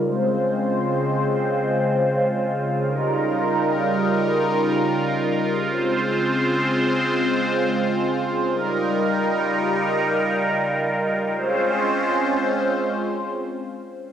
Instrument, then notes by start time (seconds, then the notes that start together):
analog synth pad
Already playing: C#3
0.06 G#3 C4 F4 C5
2.88 G3 D#4 A#4
5.71 G#3 C4 C5
8.53 G3 D#4 A#4
11.34 G#3 C4 C#4 F4 C5